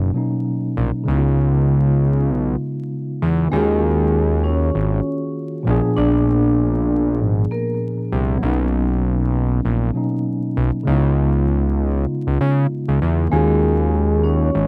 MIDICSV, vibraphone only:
0, 0, Header, 1, 2, 480
1, 0, Start_track
1, 0, Key_signature, -6, "minor"
1, 0, Tempo, 612245
1, 841, Time_signature, 4, 2, 24, 8
1, 11504, End_track
2, 0, Start_track
2, 0, Title_t, "Vibraphone"
2, 0, Program_c, 0, 11
2, 2757, Note_on_c, 0, 56, 103
2, 2762, Note_on_c, 0, 68, 81
2, 3448, Note_off_c, 0, 56, 0
2, 3450, Note_off_c, 0, 68, 0
2, 3479, Note_on_c, 0, 61, 69
2, 3484, Note_on_c, 0, 73, 54
2, 4169, Note_off_c, 0, 61, 0
2, 4172, Note_off_c, 0, 73, 0
2, 4677, Note_on_c, 0, 62, 100
2, 4682, Note_on_c, 0, 74, 72
2, 5608, Note_off_c, 0, 62, 0
2, 5611, Note_off_c, 0, 74, 0
2, 5889, Note_on_c, 0, 58, 74
2, 5895, Note_on_c, 0, 70, 61
2, 6005, Note_off_c, 0, 58, 0
2, 6008, Note_off_c, 0, 70, 0
2, 10438, Note_on_c, 0, 56, 101
2, 10444, Note_on_c, 0, 68, 78
2, 11128, Note_off_c, 0, 56, 0
2, 11132, Note_off_c, 0, 68, 0
2, 11158, Note_on_c, 0, 61, 69
2, 11164, Note_on_c, 0, 73, 54
2, 11504, Note_off_c, 0, 61, 0
2, 11504, Note_off_c, 0, 73, 0
2, 11504, End_track
0, 0, End_of_file